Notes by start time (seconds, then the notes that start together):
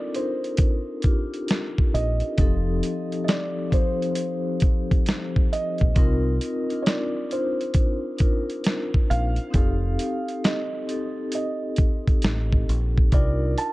Already playing: C4 D4 D#4 F4 A4 A#4 D5
0.14 D4 D#4 F4 A#4 C5, closed hi-hat
0.44 closed hi-hat
0.57 kick, closed hi-hat
1.02 D4 D#4 F4 G4, kick, closed hi-hat
1.34 closed hi-hat
1.48 snare, closed hi-hat
1.78 kick
1.94 A#1 D#5, closed hi-hat
2.20 closed hi-hat
2.37 F1 F3 C4 D#4 G4 A4, kick, closed hi-hat
2.83 closed hi-hat
3.12 closed hi-hat
3.24 D#5, closed hi-hat
3.29 D5, snare
3.70 F3 C4 D#4 G4 C5, kick, closed hi-hat
4.02 closed hi-hat
4.15 closed hi-hat
4.60 kick, closed hi-hat
4.91 kick, closed hi-hat
5.06 snare, closed hi-hat
5.36 kick
5.53 D#5, closed hi-hat
5.78 A#1, kick, closed hi-hat
5.95 C2 C4 D#4 F4 A#4, kick, closed hi-hat
6.41 closed hi-hat
6.70 D4 D#4 F4 A#4, closed hi-hat
6.82 C#5, closed hi-hat
6.87 D5, snare
7.29 D4 D#4 F4 C5, closed hi-hat
7.61 closed hi-hat
7.74 kick, closed hi-hat
8.17 D4 D#4 F4 A#4, kick, closed hi-hat
8.50 closed hi-hat
8.64 snare, closed hi-hat
8.94 kick
9.10 A#1 F5, closed hi-hat
9.36 closed hi-hat
9.50 C4 D#4 G4 A4, kick, closed hi-hat
9.55 F1
9.99 closed hi-hat
10.28 closed hi-hat
10.44 D#5, snare, closed hi-hat
10.87 C4 D#4 G4 A4, closed hi-hat
11.32 D#5, closed hi-hat
11.76 kick, closed hi-hat
12.08 kick, closed hi-hat
12.22 A1, snare, closed hi-hat
12.52 kick
12.69 A#1, closed hi-hat
12.98 kick
13.11 C2 D4 D#4 F4 A#4 D5, kick, closed hi-hat
13.58 A5, closed hi-hat